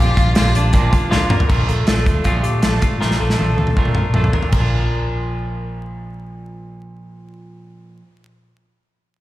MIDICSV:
0, 0, Header, 1, 6, 480
1, 0, Start_track
1, 0, Key_signature, -2, "major"
1, 0, Tempo, 378788
1, 1892, Time_signature, 4, 2, 24, 8
1, 11667, End_track
2, 0, Start_track
2, 0, Title_t, "Clean electric guitar"
2, 0, Program_c, 0, 27
2, 0, Note_on_c, 0, 67, 111
2, 198, Note_off_c, 0, 67, 0
2, 203, Note_on_c, 0, 65, 82
2, 439, Note_off_c, 0, 65, 0
2, 439, Note_on_c, 0, 67, 81
2, 920, Note_off_c, 0, 67, 0
2, 920, Note_on_c, 0, 65, 101
2, 1377, Note_off_c, 0, 65, 0
2, 1408, Note_on_c, 0, 65, 80
2, 1650, Note_off_c, 0, 65, 0
2, 1657, Note_on_c, 0, 70, 77
2, 1869, Note_off_c, 0, 70, 0
2, 1884, Note_on_c, 0, 70, 99
2, 2135, Note_off_c, 0, 70, 0
2, 2135, Note_on_c, 0, 69, 73
2, 2354, Note_off_c, 0, 69, 0
2, 2370, Note_on_c, 0, 69, 73
2, 2821, Note_off_c, 0, 69, 0
2, 2844, Note_on_c, 0, 65, 82
2, 3074, Note_on_c, 0, 67, 73
2, 3087, Note_off_c, 0, 65, 0
2, 3320, Note_off_c, 0, 67, 0
2, 3325, Note_on_c, 0, 69, 69
2, 3568, Note_off_c, 0, 69, 0
2, 3578, Note_on_c, 0, 65, 73
2, 3809, Note_on_c, 0, 70, 86
2, 3814, Note_off_c, 0, 65, 0
2, 4050, Note_off_c, 0, 70, 0
2, 4059, Note_on_c, 0, 69, 73
2, 4285, Note_off_c, 0, 69, 0
2, 4301, Note_on_c, 0, 69, 68
2, 4747, Note_off_c, 0, 69, 0
2, 4797, Note_on_c, 0, 70, 80
2, 5236, Note_off_c, 0, 70, 0
2, 5270, Note_on_c, 0, 69, 69
2, 5501, Note_off_c, 0, 69, 0
2, 5506, Note_on_c, 0, 70, 61
2, 5725, Note_off_c, 0, 70, 0
2, 5740, Note_on_c, 0, 70, 62
2, 7127, Note_off_c, 0, 70, 0
2, 11667, End_track
3, 0, Start_track
3, 0, Title_t, "Violin"
3, 0, Program_c, 1, 40
3, 0, Note_on_c, 1, 65, 102
3, 446, Note_off_c, 1, 65, 0
3, 454, Note_on_c, 1, 65, 98
3, 705, Note_on_c, 1, 62, 89
3, 724, Note_off_c, 1, 65, 0
3, 1418, Note_off_c, 1, 62, 0
3, 11667, End_track
4, 0, Start_track
4, 0, Title_t, "Clean electric guitar"
4, 0, Program_c, 2, 27
4, 0, Note_on_c, 2, 46, 94
4, 0, Note_on_c, 2, 53, 80
4, 0, Note_on_c, 2, 58, 85
4, 0, Note_on_c, 2, 62, 81
4, 0, Note_on_c, 2, 65, 86
4, 200, Note_off_c, 2, 65, 0
4, 215, Note_on_c, 2, 65, 56
4, 219, Note_off_c, 2, 46, 0
4, 220, Note_off_c, 2, 62, 0
4, 222, Note_off_c, 2, 53, 0
4, 223, Note_off_c, 2, 58, 0
4, 235, Note_on_c, 2, 62, 50
4, 245, Note_on_c, 2, 58, 44
4, 442, Note_off_c, 2, 58, 0
4, 444, Note_on_c, 2, 53, 60
4, 452, Note_off_c, 2, 62, 0
4, 456, Note_off_c, 2, 65, 0
4, 458, Note_on_c, 2, 58, 62
4, 468, Note_on_c, 2, 62, 65
4, 474, Note_on_c, 2, 65, 66
4, 671, Note_off_c, 2, 65, 0
4, 679, Note_off_c, 2, 62, 0
4, 687, Note_on_c, 2, 65, 61
4, 689, Note_off_c, 2, 53, 0
4, 689, Note_off_c, 2, 58, 0
4, 694, Note_on_c, 2, 62, 48
4, 704, Note_on_c, 2, 58, 46
4, 919, Note_off_c, 2, 58, 0
4, 921, Note_off_c, 2, 62, 0
4, 923, Note_on_c, 2, 46, 97
4, 931, Note_off_c, 2, 65, 0
4, 932, Note_on_c, 2, 53, 89
4, 935, Note_on_c, 2, 58, 99
4, 937, Note_on_c, 2, 62, 102
4, 944, Note_on_c, 2, 65, 91
4, 1133, Note_off_c, 2, 65, 0
4, 1145, Note_off_c, 2, 62, 0
4, 1148, Note_on_c, 2, 65, 62
4, 1160, Note_on_c, 2, 62, 49
4, 1162, Note_off_c, 2, 58, 0
4, 1168, Note_off_c, 2, 46, 0
4, 1173, Note_off_c, 2, 53, 0
4, 1177, Note_on_c, 2, 58, 51
4, 1387, Note_off_c, 2, 58, 0
4, 1389, Note_on_c, 2, 53, 70
4, 1393, Note_off_c, 2, 62, 0
4, 1401, Note_off_c, 2, 65, 0
4, 1402, Note_on_c, 2, 58, 81
4, 1408, Note_on_c, 2, 62, 86
4, 1417, Note_on_c, 2, 65, 82
4, 1618, Note_off_c, 2, 65, 0
4, 1633, Note_on_c, 2, 65, 63
4, 1636, Note_off_c, 2, 62, 0
4, 1641, Note_off_c, 2, 53, 0
4, 1647, Note_off_c, 2, 58, 0
4, 1651, Note_on_c, 2, 62, 63
4, 1663, Note_on_c, 2, 58, 53
4, 1882, Note_off_c, 2, 65, 0
4, 1890, Note_on_c, 2, 46, 77
4, 1892, Note_off_c, 2, 62, 0
4, 1896, Note_off_c, 2, 58, 0
4, 1898, Note_on_c, 2, 53, 72
4, 1901, Note_on_c, 2, 57, 81
4, 1906, Note_on_c, 2, 62, 82
4, 1909, Note_on_c, 2, 65, 88
4, 2118, Note_off_c, 2, 65, 0
4, 2131, Note_off_c, 2, 46, 0
4, 2131, Note_off_c, 2, 62, 0
4, 2133, Note_on_c, 2, 65, 59
4, 2135, Note_off_c, 2, 53, 0
4, 2136, Note_off_c, 2, 57, 0
4, 2146, Note_on_c, 2, 62, 46
4, 2160, Note_on_c, 2, 57, 44
4, 2366, Note_off_c, 2, 57, 0
4, 2368, Note_on_c, 2, 53, 55
4, 2372, Note_off_c, 2, 65, 0
4, 2373, Note_off_c, 2, 62, 0
4, 2382, Note_on_c, 2, 57, 66
4, 2388, Note_on_c, 2, 62, 70
4, 2390, Note_on_c, 2, 65, 72
4, 2589, Note_off_c, 2, 65, 0
4, 2604, Note_on_c, 2, 65, 57
4, 2609, Note_off_c, 2, 53, 0
4, 2611, Note_off_c, 2, 62, 0
4, 2616, Note_off_c, 2, 57, 0
4, 2626, Note_on_c, 2, 62, 48
4, 2636, Note_on_c, 2, 57, 47
4, 2847, Note_off_c, 2, 65, 0
4, 2849, Note_off_c, 2, 57, 0
4, 2853, Note_on_c, 2, 46, 77
4, 2854, Note_on_c, 2, 53, 89
4, 2855, Note_off_c, 2, 62, 0
4, 2865, Note_on_c, 2, 57, 94
4, 2870, Note_on_c, 2, 62, 93
4, 2871, Note_on_c, 2, 65, 100
4, 3069, Note_off_c, 2, 65, 0
4, 3080, Note_off_c, 2, 62, 0
4, 3084, Note_on_c, 2, 65, 55
4, 3092, Note_off_c, 2, 46, 0
4, 3092, Note_off_c, 2, 53, 0
4, 3094, Note_off_c, 2, 57, 0
4, 3095, Note_on_c, 2, 62, 48
4, 3109, Note_on_c, 2, 57, 48
4, 3316, Note_off_c, 2, 57, 0
4, 3323, Note_off_c, 2, 62, 0
4, 3325, Note_on_c, 2, 53, 67
4, 3327, Note_off_c, 2, 65, 0
4, 3331, Note_on_c, 2, 57, 63
4, 3338, Note_on_c, 2, 62, 74
4, 3347, Note_on_c, 2, 65, 83
4, 3548, Note_off_c, 2, 65, 0
4, 3563, Note_on_c, 2, 65, 58
4, 3564, Note_off_c, 2, 62, 0
4, 3568, Note_off_c, 2, 53, 0
4, 3571, Note_off_c, 2, 57, 0
4, 3579, Note_on_c, 2, 62, 51
4, 3592, Note_on_c, 2, 57, 44
4, 3802, Note_off_c, 2, 57, 0
4, 3807, Note_off_c, 2, 65, 0
4, 3809, Note_off_c, 2, 62, 0
4, 3809, Note_on_c, 2, 46, 75
4, 3812, Note_on_c, 2, 53, 80
4, 3818, Note_on_c, 2, 57, 80
4, 3822, Note_on_c, 2, 65, 87
4, 3824, Note_on_c, 2, 62, 74
4, 4041, Note_off_c, 2, 65, 0
4, 4050, Note_off_c, 2, 46, 0
4, 4051, Note_off_c, 2, 53, 0
4, 4051, Note_off_c, 2, 62, 0
4, 4054, Note_off_c, 2, 57, 0
4, 4056, Note_on_c, 2, 65, 53
4, 4066, Note_on_c, 2, 62, 49
4, 4077, Note_on_c, 2, 57, 43
4, 4281, Note_off_c, 2, 57, 0
4, 4288, Note_off_c, 2, 62, 0
4, 4288, Note_on_c, 2, 53, 65
4, 4293, Note_off_c, 2, 65, 0
4, 4296, Note_on_c, 2, 57, 65
4, 4303, Note_on_c, 2, 62, 62
4, 4313, Note_on_c, 2, 65, 65
4, 4515, Note_off_c, 2, 65, 0
4, 4529, Note_off_c, 2, 53, 0
4, 4529, Note_off_c, 2, 62, 0
4, 4530, Note_on_c, 2, 65, 49
4, 4533, Note_off_c, 2, 57, 0
4, 4544, Note_on_c, 2, 62, 42
4, 4558, Note_on_c, 2, 57, 46
4, 4762, Note_off_c, 2, 57, 0
4, 4768, Note_on_c, 2, 46, 73
4, 4770, Note_off_c, 2, 65, 0
4, 4774, Note_off_c, 2, 62, 0
4, 4774, Note_on_c, 2, 53, 85
4, 4777, Note_on_c, 2, 57, 76
4, 4785, Note_on_c, 2, 65, 88
4, 4789, Note_on_c, 2, 62, 81
4, 4998, Note_off_c, 2, 65, 0
4, 5009, Note_off_c, 2, 46, 0
4, 5009, Note_off_c, 2, 62, 0
4, 5013, Note_off_c, 2, 53, 0
4, 5013, Note_on_c, 2, 65, 51
4, 5014, Note_off_c, 2, 57, 0
4, 5024, Note_on_c, 2, 62, 51
4, 5039, Note_on_c, 2, 57, 47
4, 5238, Note_off_c, 2, 57, 0
4, 5244, Note_on_c, 2, 53, 62
4, 5251, Note_off_c, 2, 62, 0
4, 5252, Note_off_c, 2, 65, 0
4, 5253, Note_on_c, 2, 57, 68
4, 5267, Note_on_c, 2, 62, 71
4, 5274, Note_on_c, 2, 65, 71
4, 5486, Note_off_c, 2, 65, 0
4, 5488, Note_off_c, 2, 53, 0
4, 5492, Note_off_c, 2, 57, 0
4, 5496, Note_off_c, 2, 62, 0
4, 5501, Note_on_c, 2, 65, 54
4, 5511, Note_on_c, 2, 62, 48
4, 5522, Note_on_c, 2, 57, 46
4, 5689, Note_on_c, 2, 46, 67
4, 5736, Note_off_c, 2, 65, 0
4, 5738, Note_on_c, 2, 53, 68
4, 5742, Note_off_c, 2, 62, 0
4, 5747, Note_off_c, 2, 57, 0
4, 5810, Note_on_c, 2, 62, 71
4, 5843, Note_on_c, 2, 65, 80
4, 10124, Note_off_c, 2, 46, 0
4, 10173, Note_off_c, 2, 53, 0
4, 10245, Note_off_c, 2, 62, 0
4, 10278, Note_off_c, 2, 65, 0
4, 11667, End_track
5, 0, Start_track
5, 0, Title_t, "Fingered electric bass"
5, 0, Program_c, 3, 33
5, 0, Note_on_c, 3, 34, 123
5, 176, Note_off_c, 3, 34, 0
5, 220, Note_on_c, 3, 34, 93
5, 415, Note_off_c, 3, 34, 0
5, 462, Note_on_c, 3, 34, 107
5, 656, Note_off_c, 3, 34, 0
5, 703, Note_on_c, 3, 34, 98
5, 896, Note_off_c, 3, 34, 0
5, 939, Note_on_c, 3, 34, 106
5, 1134, Note_off_c, 3, 34, 0
5, 1176, Note_on_c, 3, 33, 85
5, 1420, Note_off_c, 3, 33, 0
5, 1420, Note_on_c, 3, 38, 100
5, 1661, Note_off_c, 3, 38, 0
5, 1661, Note_on_c, 3, 33, 91
5, 1854, Note_off_c, 3, 33, 0
5, 1898, Note_on_c, 3, 34, 100
5, 2092, Note_off_c, 3, 34, 0
5, 2125, Note_on_c, 3, 34, 86
5, 2324, Note_off_c, 3, 34, 0
5, 2367, Note_on_c, 3, 34, 93
5, 2618, Note_off_c, 3, 34, 0
5, 2618, Note_on_c, 3, 38, 94
5, 2812, Note_off_c, 3, 38, 0
5, 2851, Note_on_c, 3, 34, 90
5, 3047, Note_off_c, 3, 34, 0
5, 3101, Note_on_c, 3, 46, 81
5, 3294, Note_off_c, 3, 46, 0
5, 3344, Note_on_c, 3, 34, 89
5, 3535, Note_off_c, 3, 34, 0
5, 3578, Note_on_c, 3, 33, 83
5, 3772, Note_off_c, 3, 33, 0
5, 3808, Note_on_c, 3, 34, 98
5, 4006, Note_off_c, 3, 34, 0
5, 4059, Note_on_c, 3, 34, 91
5, 4253, Note_off_c, 3, 34, 0
5, 4302, Note_on_c, 3, 34, 92
5, 4494, Note_off_c, 3, 34, 0
5, 4551, Note_on_c, 3, 38, 83
5, 4779, Note_off_c, 3, 38, 0
5, 4779, Note_on_c, 3, 34, 79
5, 5021, Note_on_c, 3, 46, 71
5, 5040, Note_off_c, 3, 34, 0
5, 5214, Note_off_c, 3, 46, 0
5, 5255, Note_on_c, 3, 34, 81
5, 5451, Note_off_c, 3, 34, 0
5, 5492, Note_on_c, 3, 33, 72
5, 5689, Note_off_c, 3, 33, 0
5, 5740, Note_on_c, 3, 34, 82
5, 9572, Note_off_c, 3, 34, 0
5, 11667, End_track
6, 0, Start_track
6, 0, Title_t, "Drums"
6, 217, Note_on_c, 9, 36, 99
6, 220, Note_on_c, 9, 42, 73
6, 344, Note_off_c, 9, 36, 0
6, 347, Note_off_c, 9, 42, 0
6, 446, Note_on_c, 9, 42, 96
6, 458, Note_on_c, 9, 38, 121
6, 573, Note_off_c, 9, 42, 0
6, 584, Note_off_c, 9, 38, 0
6, 698, Note_on_c, 9, 42, 81
6, 824, Note_off_c, 9, 42, 0
6, 924, Note_on_c, 9, 42, 81
6, 933, Note_on_c, 9, 36, 94
6, 1051, Note_off_c, 9, 42, 0
6, 1059, Note_off_c, 9, 36, 0
6, 1175, Note_on_c, 9, 36, 83
6, 1175, Note_on_c, 9, 42, 70
6, 1302, Note_off_c, 9, 36, 0
6, 1302, Note_off_c, 9, 42, 0
6, 1415, Note_on_c, 9, 38, 68
6, 1542, Note_off_c, 9, 38, 0
6, 1647, Note_on_c, 9, 45, 106
6, 1774, Note_off_c, 9, 45, 0
6, 1775, Note_on_c, 9, 43, 97
6, 1894, Note_on_c, 9, 49, 84
6, 1896, Note_on_c, 9, 36, 109
6, 1902, Note_off_c, 9, 43, 0
6, 2021, Note_off_c, 9, 49, 0
6, 2022, Note_off_c, 9, 36, 0
6, 2138, Note_on_c, 9, 42, 71
6, 2265, Note_off_c, 9, 42, 0
6, 2367, Note_on_c, 9, 42, 81
6, 2379, Note_on_c, 9, 38, 114
6, 2494, Note_off_c, 9, 42, 0
6, 2505, Note_off_c, 9, 38, 0
6, 2616, Note_on_c, 9, 36, 80
6, 2617, Note_on_c, 9, 42, 63
6, 2743, Note_off_c, 9, 36, 0
6, 2743, Note_off_c, 9, 42, 0
6, 2841, Note_on_c, 9, 42, 68
6, 2853, Note_on_c, 9, 36, 73
6, 2968, Note_off_c, 9, 42, 0
6, 2980, Note_off_c, 9, 36, 0
6, 3089, Note_on_c, 9, 42, 60
6, 3216, Note_off_c, 9, 42, 0
6, 3326, Note_on_c, 9, 42, 94
6, 3331, Note_on_c, 9, 38, 100
6, 3453, Note_off_c, 9, 42, 0
6, 3458, Note_off_c, 9, 38, 0
6, 3570, Note_on_c, 9, 42, 74
6, 3578, Note_on_c, 9, 36, 82
6, 3697, Note_off_c, 9, 42, 0
6, 3704, Note_off_c, 9, 36, 0
6, 3821, Note_on_c, 9, 38, 49
6, 3942, Note_off_c, 9, 38, 0
6, 3942, Note_on_c, 9, 38, 45
6, 4068, Note_off_c, 9, 38, 0
6, 4182, Note_on_c, 9, 38, 54
6, 4294, Note_on_c, 9, 48, 61
6, 4308, Note_off_c, 9, 38, 0
6, 4421, Note_off_c, 9, 48, 0
6, 4537, Note_on_c, 9, 48, 59
6, 4650, Note_on_c, 9, 47, 57
6, 4664, Note_off_c, 9, 48, 0
6, 4774, Note_on_c, 9, 36, 79
6, 4776, Note_off_c, 9, 47, 0
6, 4883, Note_on_c, 9, 47, 53
6, 4901, Note_off_c, 9, 36, 0
6, 5001, Note_on_c, 9, 45, 71
6, 5010, Note_off_c, 9, 47, 0
6, 5127, Note_off_c, 9, 45, 0
6, 5244, Note_on_c, 9, 45, 82
6, 5370, Note_off_c, 9, 45, 0
6, 5374, Note_on_c, 9, 43, 62
6, 5491, Note_off_c, 9, 43, 0
6, 5491, Note_on_c, 9, 43, 93
6, 5607, Note_off_c, 9, 43, 0
6, 5607, Note_on_c, 9, 43, 69
6, 5731, Note_on_c, 9, 49, 72
6, 5734, Note_off_c, 9, 43, 0
6, 5736, Note_on_c, 9, 36, 84
6, 5857, Note_off_c, 9, 49, 0
6, 5863, Note_off_c, 9, 36, 0
6, 11667, End_track
0, 0, End_of_file